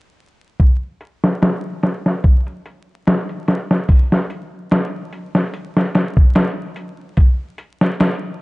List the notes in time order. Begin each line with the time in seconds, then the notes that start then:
0.60 kick, closed hi-hat
1.01 closed hi-hat
1.24 snare
1.42 snare, closed hi-hat
1.83 snare, closed hi-hat
2.06 snare
2.24 kick, closed hi-hat
2.47 closed hi-hat
2.66 closed hi-hat
3.07 snare, closed hi-hat
3.29 closed hi-hat
3.48 snare, closed hi-hat
3.71 snare
3.89 kick, open hi-hat
4.12 snare
4.30 closed hi-hat
4.71 snare, closed hi-hat
5.13 closed hi-hat
5.35 snare
5.54 closed hi-hat
5.77 snare
5.95 snare, closed hi-hat
6.17 kick
6.35 snare, closed hi-hat
6.76 closed hi-hat
7.17 kick, closed hi-hat
7.58 closed hi-hat
7.81 snare
8.00 snare, closed hi-hat